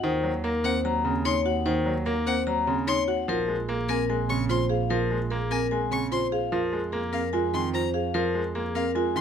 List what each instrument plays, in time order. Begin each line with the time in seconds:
Already playing: vibraphone F#5
0.03 double bass D#2, grand piano D#3, marimba D#4, vibraphone C5
0.24 grand piano F#3
0.44 grand piano A#3, marimba A#4, vibraphone A#4
0.64 marimba C4, vibraphone C5, violin F#5
0.85 grand piano F#3, vibraphone A#5
1.05 grand piano C#3, marimba C4
1.25 marimba D#4, vibraphone C#5, violin C6
1.46 marimba F#4, vibraphone F#5
1.66 grand piano D#3, marimba D#4, vibraphone C5
1.86 grand piano F#3
2.06 grand piano A#3, vibraphone A#4, marimba A#4
2.27 marimba C4, vibraphone C5, violin F#5
2.47 grand piano F#3, vibraphone A#5
2.67 grand piano C#3, marimba C4
2.87 marimba D#4, vibraphone C#5, violin C6
3.08 marimba F#4, vibraphone F#5
3.28 double bass A#1, grand piano F3, marimba F4, vibraphone A#4
3.48 grand piano G#3
3.69 grand piano A#3, vibraphone G#4, marimba A#4
3.89 marimba C4, vibraphone A#4, violin G#5
4.10 grand piano G#3, vibraphone G#5
4.29 grand piano C#3, marimba C4, violin C#6
4.49 marimba F4, vibraphone C5, violin C6
4.69 marimba G#4, vibraphone F5
4.90 grand piano F3, marimba F4, vibraphone A#4
5.11 grand piano G#3
5.30 grand piano A#3, vibraphone G#4, marimba A#4
5.51 marimba C4, vibraphone A#4, violin G#5
5.71 grand piano G#3, vibraphone G#5
5.91 grand piano C#3, marimba C4, violin C#6
6.12 marimba F4, vibraphone C5, violin C6
6.32 marimba G#4, vibraphone F5
6.52 double bass F2, grand piano F3, marimba F4, vibraphone A#4
6.73 grand piano G#3
6.92 grand piano A#3, vibraphone G#4, marimba A#4
7.13 marimba C4, vibraphone A#4, violin F5
7.33 grand piano G#3, marimba F4, vibraphone G#5
7.54 grand piano D#3, marimba C4, violin C6
7.74 marimba F4, vibraphone C5, violin A#5
7.94 marimba G#4, vibraphone F5
8.14 grand piano F3, marimba F4, vibraphone A#4
8.35 grand piano G#3
8.55 grand piano A#3, vibraphone G#4, marimba A#4
8.75 marimba C4, vibraphone A#4, violin F5
8.95 grand piano G#3, marimba F4, vibraphone G#5
9.16 grand piano D#3, marimba C4, violin C6